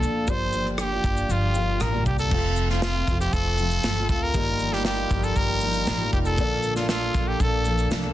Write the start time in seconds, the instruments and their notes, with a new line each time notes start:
Already playing: twelve-string acoustic guitar A#2 D3 F3 A#3 D4 A4, felt piano A#3 F4 D5, trumpet A4
0.02 upright bass D2, shaker
0.26 upright bass G1, twelve-string acoustic guitar F3 A#3 D4, felt piano A#3 F4 G4 D5, trumpet C5, kick, shaker
0.52 twelve-string acoustic guitar F3 A#3 D4 G4, shaker
0.66 cross-stick
0.78 trumpet G4, cross-stick, shaker
0.91 twelve-string acoustic guitar F3 A#3 D4 G4
1.04 upright bass G1, kick, shaker
1.17 shaker
1.29 upright bass G1, twelve-string acoustic guitar G2 D3 F3 A#3 D4 G4, trumpet F4, shaker
1.54 twelve-string acoustic guitar F3 A#3 D4 G4, felt piano A#3 F4 G4 F5, shaker
1.80 upright bass A1, trumpet A#4, cross-stick, shaker
1.92 twelve-string acoustic guitar G2 D3 F3 A#3 D4 G4
2.06 upright bass C2, trumpet G4, kick, shaker
2.19 trumpet A4, shaker
2.29 upright bass F1, twelve-string acoustic guitar F3 C4 F4 A4, harmonium A3 C4 F4, felt piano C4 F4 A4, kick, crash
2.33 felt piano F5
2.56 shaker
2.69 twelve-string acoustic guitar C4 F4 A4, trumpet F4, snare
2.82 trumpet F4, snare, shaker
3.08 upright bass F1, twelve-string acoustic guitar F3 C4 F4 A4, kick, shaker
3.21 trumpet G4, shaker
3.33 upright bass F1, trumpet A4, kick, shaker
3.58 twelve-string acoustic guitar F3 C4 F4 A4, shaker
3.71 shaker
3.83 upright bass G1, twelve-string acoustic guitar F3 C4 F4 A4, snare, shaker
3.96 twelve-string acoustic guitar C4 F4 A4
4.09 upright bass D2, trumpet A4, kick, shaker
4.23 trumpet A#4
4.32 upright bass G1, twelve-string acoustic guitar G2 D#3 F3 A#3 D#4, harmonium G3 D#4 F4 A#4, felt piano A#3 F4 G4, kick, shaker
4.36 twelve-string acoustic guitar G4, felt piano D#5
4.59 shaker
4.73 twelve-string acoustic guitar F3 A#3 D#4 G4, trumpet G4, snare
4.85 trumpet G4, snare, shaker
5.11 upright bass G1, twelve-string acoustic guitar F3 A#3 D#4 G4, kick, shaker
5.23 trumpet A4, shaker
5.36 upright bass G1, trumpet A#4, kick, shaker
5.61 twelve-string acoustic guitar F3 A#3 D#4, shaker
5.65 twelve-string acoustic guitar G4
5.74 shaker
5.87 upright bass A1, twelve-string acoustic guitar F3 A#3 D#4 G4, snare, shaker
6.00 twelve-string acoustic guitar F3 A#3 D#4 G4
6.13 upright bass F1, trumpet G4, kick, shaker
6.25 trumpet A4, shaker
6.36 upright bass A#1, twelve-string acoustic guitar A#2 D3 F3 A#3 D4 A4, felt piano A#3 F4 A4, harmonium A#3 D4 A4, kick, shaker
6.40 felt piano D5
6.63 shaker
6.76 twelve-string acoustic guitar F3 A#3 D4 A4, trumpet F4, snare, shaker
6.89 trumpet F4, snare, shaker
7.14 upright bass A#1, twelve-string acoustic guitar F3 A#3 D4 A4, kick, shaker
7.28 trumpet G4
7.40 upright bass A#1, trumpet A4, kick, shaker
7.65 twelve-string acoustic guitar F3 A#3 D4 A4, shaker
7.78 shaker
7.91 upright bass C2, twelve-string acoustic guitar F3 A#3 D4 A4, snare, shaker
8.04 twelve-string acoustic guitar F3 A#3 D4 A4